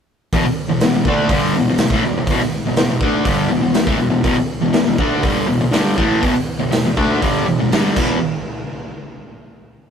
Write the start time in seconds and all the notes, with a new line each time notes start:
0.33 E2 B2, kick, open hi-hat
0.45 muted distorted electric guitar stroke
0.68 E2 B2
0.80 E2 B2, snare, open hi-hat
0.94 E2 B2
1.05 D3 A3 D4, kick
1.29 G2 D3 G3, kick, open hi-hat
1.57 E2 B2
1.69 E2 B2
1.78 E2 B2, snare, open hi-hat
1.90 A2 E3, kick
2.05 E2 B2
2.18 E2 B2
2.27 E2 B2, kick, open hi-hat
2.40 muted distorted electric guitar stroke, snare
2.66 E2 B2
2.76 E2 B2, snare, open hi-hat
2.91 E2 B2
3.01 D3 A3 D4, kick
3.25 G2 D3 G3, kick, open hi-hat
3.49 E2 B2
3.61 E2 B2
3.73 E2 B2, snare, open hi-hat
3.87 A2 E3, kick
3.99 E2 B2
4.10 E2 B2
4.23 E2 B2, kick, open hi-hat
4.38 muted distorted electric guitar stroke
4.61 E2 B2
4.73 E2 B2, snare, open hi-hat
4.86 E2 B2
4.98 D3 A3 D4, kick
5.23 G2 D3 G3, kick, open hi-hat
5.47 E2 B2
5.61 E2 B2
5.72 G2 D3 G3, snare, open hi-hat
5.97 A2 E3 A3, kick
6.21 E2 B2, kick, open hi-hat
6.34 muted distorted electric guitar stroke
6.59 E2 B2
6.71 E2 B2, snare, open hi-hat
6.86 E2 B2
6.97 D3 A3 D4, kick
7.21 G2 D3 G3, kick, open hi-hat
7.47 E2 B2
7.60 E2 B2
7.72 G2 D3 G3, snare, open hi-hat
7.96 E2 B2 E3, kick, crash